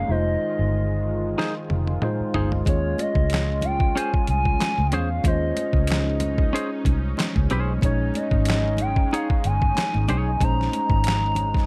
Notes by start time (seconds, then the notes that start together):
Already playing: G#3 F5
0.08 F1 D#3 G#3 D#4 F4 D#5
0.12 C5
0.59 G1
1.38 D#4 G#4 C5, snare
1.70 F1, high tom
1.87 high tom
2.02 G#3 D#4 F4 C5, muted clean electric guitar stroke, mid tom
2.20 muted fingered electric bass stroke
2.34 G1 D#4 G#4 C5, floor tom
2.52 floor tom
2.65 D#2 G#3 C#4 F4 C#5, kick, closed hi-hat, muted conga
2.69 C#5
2.98 D#5, closed hi-hat, muted conga, high conga
3.15 C#2, kick, high conga
3.30 clap, closed hi-hat
3.34 snare
3.61 G5, closed hi-hat, high conga, low conga
3.80 kick
3.95 C#4 G#4 C5 G#5, closed hi-hat, muted conga
4.14 kick
4.27 C2 G#5, closed hi-hat
4.45 kick
4.59 muted clean electric guitar stroke, snare, clap, closed hi-hat, high conga
4.78 C#2, high conga
4.87 G5
4.92 E2 C#4 G#4 C5 F5, closed hi-hat, high conga, low conga
5.24 D#2 G#3 C#4 D#4 F4 D#5, kick, closed hi-hat, muted conga
5.28 C5
5.57 closed hi-hat, high conga
5.73 C#2, kick, high conga
5.87 clap, closed hi-hat, muted conga
5.92 snare
6.20 closed hi-hat, muted conga, high conga, low conga
6.38 kick
6.53 C#4 G#4 C5, closed hi-hat
6.85 C2, kick, closed hi-hat, muted conga
7.17 muted clean electric guitar stroke, snare, clap, closed hi-hat, muted conga, high conga
7.36 C#2, kick, high conga
7.50 B1 C#4 G#4 C5, closed hi-hat, muted conga, high conga, low conga
7.81 A#1 G#3 C#4 D#4 C#5, kick, closed hi-hat, muted conga
7.86 C#5
8.14 D#5, closed hi-hat, muted conga, high conga
8.31 G#1, kick, high conga
8.45 clap, closed hi-hat, muted conga
8.50 snare
8.77 closed hi-hat, high conga, low conga
8.81 G5
8.96 kick
9.11 D#4 G#4 C#5 F5, closed hi-hat, muted conga
9.30 kick
9.44 G1 G#5, closed hi-hat
9.62 kick
9.75 muted clean electric guitar stroke, snare, clap, closed hi-hat, high conga
9.94 G#1, high conga
10.08 B1 D#4 G#4 C#5, closed hi-hat, high conga, low conga
10.40 A#1 G#3 C#4 D#4 A#5, kick, closed hi-hat
10.45 C5
10.61 snare
10.72 closed hi-hat, muted conga, high conga
10.90 G#1, kick, high conga
11.04 clap, closed hi-hat, muted conga
11.08 snare
11.35 closed hi-hat, muted conga, low conga
11.54 kick, snare